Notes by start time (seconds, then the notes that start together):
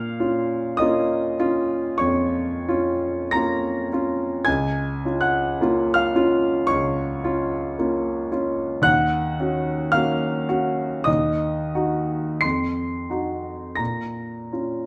Already playing: A#2 F5 F6
0.20 C#4 F4
0.77 A#3 C#4 D#5 D#6
0.81 F4
1.40 C#4 F4
1.98 F2 C#5 C#6
2.68 C#4 F4
3.31 A#3 C#4 A#5 A#6
3.35 F4
3.92 C#4 F4
4.45 C#2 G#5 G#6
5.05 C#4 F4
5.21 F#5 F#6
5.61 A#3 C#4 F4
5.94 F5 F6
6.15 C#4 F4
6.67 C#2 C#5 C#6
7.24 C#4 F4
7.79 A#3 C#4 F4
8.32 C#4 F4
8.82 D#2 F#5 F#6
9.40 C#4 F#4
9.92 A#3 C#4 F#4 F5 F6
10.49 C#4 F#4
11.04 D#2 D#5 D#6
11.75 D#4 F#4
12.41 F2 C6 C7
13.10 D#4 F#4
13.76 A#2 A#5 A#6
14.52 C#4 F4